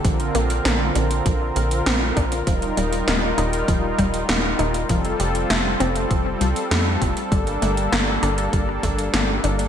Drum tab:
HH |xxxxx-xxx-xxx-xx|xxxxx-xxx-xxx-xx|xxxxx-xxx-xxx-xx|xxxxx-xxx-xxx-xx|
SD |----o-------o---|----o-------o---|----o-------o---|----o-------o---|
BD |o-------o-----o-|o-------o-o-----|o-------o-----o-|o-------o-o-----|